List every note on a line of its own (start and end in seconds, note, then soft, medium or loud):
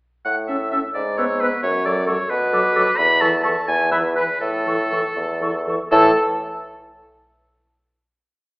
0.25 0.83 A2 soft
0.25 0.36 F#5 medium
0.48 0.57 C#4 soft
0.48 0.57 A4 soft
0.48 0.70 E5 soft
0.48 0.56 E6 soft
0.71 0.81 C#4 soft
0.71 0.80 A4 soft
0.71 0.81 E5 medium
0.71 0.78 E6 soft
0.94 1.51 G#2 soft
0.94 1.19 D5 medium
1.17 1.27 B3 soft
1.17 1.26 B4 soft
1.17 1.42 C#5 medium
1.17 1.24 E6 soft
1.40 1.49 B3 soft
1.40 1.48 B4 soft
1.40 1.62 B4 medium
1.40 1.46 E6 soft
1.63 2.20 F#2 medium
1.63 1.87 C#5 medium
1.84 1.94 F#3 soft
1.84 1.93 A4 soft
1.84 2.07 D5 medium
1.84 1.90 C#6 soft
2.06 2.17 F#3 soft
2.06 2.15 A4 soft
2.06 2.32 C#5 medium
2.06 2.13 C#6 soft
2.30 2.87 B2 medium
2.30 2.99 B4 medium
2.52 2.61 F#3 medium
2.52 2.60 A4 soft
2.52 2.59 D6 soft
2.75 2.84 F#3 medium
2.75 2.83 A4 soft
2.75 2.81 D6 medium
2.97 3.56 E2 medium
2.97 3.23 B5 loud
3.20 3.30 E3 medium
3.20 3.29 A4 medium
3.20 3.43 A5 medium
3.20 3.27 C#6 soft
3.43 3.52 E3 medium
3.43 3.52 A4 medium
3.43 3.67 A5 medium
3.43 3.50 C#6 medium
3.68 4.29 E2 medium
3.68 3.91 G#5 medium
3.91 4.00 E3 medium
3.91 4.00 B4 soft
3.91 4.03 E5 medium
3.91 3.97 B5 soft
4.15 4.25 E3 medium
4.15 4.24 B4 soft
4.15 4.40 B4 medium
4.15 4.22 B5 soft
4.41 5.04 A2 medium
4.41 5.64 A4 medium
4.65 4.76 E3 soft
4.65 4.74 A4 soft
4.65 4.73 C#6 soft
4.91 5.01 E3 soft
4.91 5.00 A4 soft
4.91 4.99 C#6 medium
5.16 5.79 E2 medium
5.41 5.51 E3 soft
5.41 5.50 A4 soft
5.41 5.48 C#6 soft
5.67 5.76 E3 soft
5.67 5.76 A4 soft
5.67 5.75 C#6 soft
5.91 6.12 A2 medium
5.91 6.12 E3 medium
5.91 6.11 A4 medium
5.91 6.12 A4 loud
5.91 6.19 A5 medium